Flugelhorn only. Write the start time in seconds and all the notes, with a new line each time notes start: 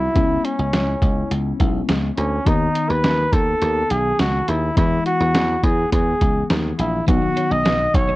Already playing: E4
0.45 C#4
2.18 C#4
2.47 D#4
2.90 B4
3.33 A4
3.91 G#4
4.20 F#4
4.49 E4
4.78 E4
5.06 F#4
5.64 G#4
5.93 G#4
6.79 E4
7.08 F#4
7.52 D#5
7.95 C#5